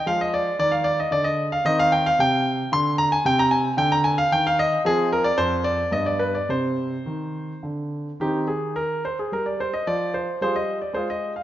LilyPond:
<<
  \new Staff \with { instrumentName = "Grand piano" } { \time 3/4 \key c \minor \tempo 4 = 111 << { f''16 ees''16 d''8 d''16 f''16 d''16 ees''16 d''16 ees''8 f''16 | ees''16 f''16 g''16 f''16 g''4 c'''8 bes''16 aes''16 | g''16 bes''16 aes''8 g''16 bes''16 aes''16 f''16 g''16 f''16 ees''8 | aes'8 bes'16 d''16 c''8 d''8 ees''16 d''16 b'16 d''16 |
c''2 r4 | <c' ees' g'>8 aes'8 bes'8 c''16 aes'16 bes'16 d''16 c''16 ees''16 | d''8 c''8 <f' aes' c''>16 ees''8 d''16 <f' aes' c''>16 ees''8 f''16 | } \\ { aes2. | c'2. | c'2. | c'2 b4 |
c'2. | r2. | r2. | } >> }
  \new Staff \with { instrumentName = "Grand piano" } { \clef bass \time 3/4 \key c \minor f4 ees4 d4 | ees4 c4 d4 | c4 d4 ees4 | f4 f,4 g,4 |
c4 ees4 d4 | ees2 g4 | f4 g4 aes4 | }
>>